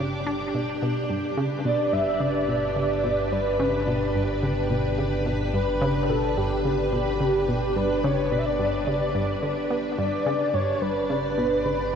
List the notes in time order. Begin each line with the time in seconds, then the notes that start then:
Already playing: G1 D4 G4 D5
0.00 C#3
0.26 D4
0.54 B2
0.82 B2
1.10 G1 G2
1.37 C#3 B4
1.65 B2 D5
1.93 G2 E5
2.21 C#3 D5
2.48 B2
2.76 C#3
3.04 B2
3.32 G2 B4
3.59 C#3
3.87 B2
4.15 G2
4.43 C#3
4.70 B2
4.98 C#3
5.26 B2
5.54 G2 B4
5.82 C#3
6.09 B2 A4
6.37 G2 G4
6.65 C#3 G4
6.92 B2
7.20 C#3
7.48 B2
7.76 G2 B4
8.03 C#3 C#5
8.31 B2 D5
8.39 E5
8.45 D5
8.59 G2
8.87 C#3
9.15 G2
9.43 D3
9.70 B3
9.98 G1 G2 D5
10.26 C#3
10.30 D5
10.54 G2 C#5
10.82 G2 B4
11.09 C#3 B4
11.37 B2
11.65 C#3